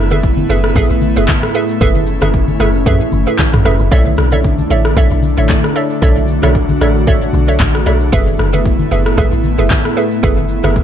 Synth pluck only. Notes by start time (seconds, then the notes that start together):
0.11 G#4 A4 B4 E5
0.49 G#4 A4 B4 E5
0.76 G#4 A4 B4 E5
1.16 G#4 A4 B4 E5
1.55 G#4 A4 B4 E5
1.81 G#4 A4 B4 E5
2.22 G#4 A4 B4 E5
2.60 G#4 A4 B4 E5
2.86 G#4 A4 B4 E5
3.27 G#4 A4 B4 E5
3.65 G#4 A4 B4 E5
3.91 A4 C#5 D5 E5
4.32 A4 C#5 D5 E5
4.70 A4 C#5 D5 E5
4.97 A4 C#5 D5 E5
5.37 A4 C#5 D5 E5
5.76 A4 C#5 D5 E5
6.02 A4 C#5 D5 E5
6.43 A4 C#5 D5 E5
6.81 A4 C#5 D5 E5
7.07 A4 C#5 D5 E5
7.48 A4 C#5 D5 E5
7.86 A4 C#5 D5 E5
8.12 G#4 A4 B4 E5
8.53 G#4 A4 B4 E5
8.91 G#4 A4 B4 E5
9.18 G#4 A4 B4 E5
9.58 G#4 A4 B4 E5
9.97 G#4 A4 B4 E5
10.23 G#4 A4 B4 E5
10.64 G#4 A4 B4 E5